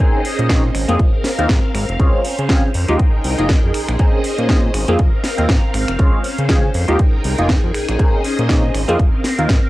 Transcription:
Already playing: C#4 G#4 C5 D#5
0.00 A#3 C4 C#4 D#4 G#4, closed hi-hat
0.25 open hi-hat
0.39 A#2, closed hi-hat
0.49 A#3 C4 C#4 D#4 G#4, kick, snare, closed hi-hat
0.74 G#1 C4 A#4 F5, finger snap, open hi-hat
0.88 F2 A#3 C4 D#4 F4 G#4, closed hi-hat
1.00 F1, kick, closed hi-hat
1.24 snare, open hi-hat
1.38 D#2 A#3 C4 D#4 F4 A#4, closed hi-hat
1.49 G#2, kick, snare, closed hi-hat
1.75 G#1, finger snap, open hi-hat
1.89 F1, closed hi-hat
1.99 C#2 G#3 C4 C#4 F4 G#4 C5, kick, closed hi-hat
2.25 open hi-hat
2.39 C#3, closed hi-hat
2.49 G#3 C4 C#4 F4 G#4, kick, snare, closed hi-hat
2.74 F2 D#4 G#4 A#4 G5, open hi-hat
2.88 D#2 G#3 A#3 D#4 F4 G4, closed hi-hat
2.99 kick, closed hi-hat
3.14 C2
3.24 C2, open hi-hat
3.38 F1 G#3 A#3 D#4 F4 G#4, closed hi-hat
3.49 kick, snare, closed hi-hat
3.64 F2
3.74 A#1 C#4 C5 D#5, finger snap, open hi-hat
3.89 A#1, finger snap, closed hi-hat
3.99 A#3 C4 C#4 D#4 G#4, kick, closed hi-hat
4.24 open hi-hat
4.38 A#2, closed hi-hat
4.49 A#3 C4 C#4 D#4 G#4, kick, snare, closed hi-hat
4.74 G#1 C4 A#4 F5, finger snap, open hi-hat
4.88 F2 A#3 C4 D#4 F4 G#4, closed hi-hat
4.99 F1, kick, closed hi-hat
5.24 snare, open hi-hat
5.38 D#2 A#3 C4 D#4 F4 A#4, closed hi-hat
5.49 G#2, kick, snare, closed hi-hat
5.74 G#1, finger snap, open hi-hat
5.88 F1, finger snap, closed hi-hat
5.99 C#2 G#3 C4 C#4 F4 G#4 C5, kick, closed hi-hat
6.24 open hi-hat
6.38 C#3, closed hi-hat
6.49 G#3 C4 C#4 F4 G#4, kick, snare, closed hi-hat
6.74 F2 D#4 G#4 A#4 G5, open hi-hat
6.88 D#2 G#3 A#3 D#4 F4 G4, closed hi-hat
6.99 kick, closed hi-hat
7.14 C2
7.24 C2, open hi-hat
7.38 F1 G#3 A#3 D#4 F4 G#4, closed hi-hat
7.49 kick, snare, closed hi-hat
7.64 F2
7.74 A#1 C#4 C5 D#5, finger snap, open hi-hat
7.89 A#1, finger snap, closed hi-hat
7.99 A#3 C4 C#4 D#4 G#4, kick, closed hi-hat
8.24 open hi-hat
8.39 A#2, closed hi-hat
8.49 A#3 C4 C#4 D#4 G#4, kick, snare, closed hi-hat
8.75 G#1 C4 A#4 F5, finger snap, open hi-hat
8.88 F2 A#3 C4 D#4 F4 G#4, closed hi-hat
8.99 F1, kick, closed hi-hat
9.24 snare, open hi-hat
9.38 D#2 A#3 C4 D#4 F4 A#4, closed hi-hat
9.49 G#2, kick, snare, closed hi-hat

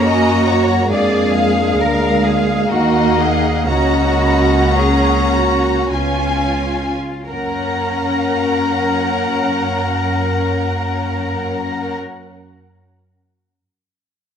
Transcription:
Already playing: F#2 A#3 C#4 A#5
0.04 F#4 D#5 G#5
0.47 C#5 F#5
0.90 F2 G#3 D4 G#4 D5 F5
1.36 F5
1.79 D2 A#4 F5
2.25 G#4
2.69 D#2 A#3 D#4 F#4 D#5 F#5 A#5
3.18 G#4
3.67 C#2 A#3 C#4 F#4 D#5 F#5 A#5
4.20 B5
4.73 G#4 C#5 C#6
5.31 F#4
5.91 C#2 B3 C#4 F4 C#5 G#5
7.28 F#2 A#3 C#4 A#4 F#5 A#5

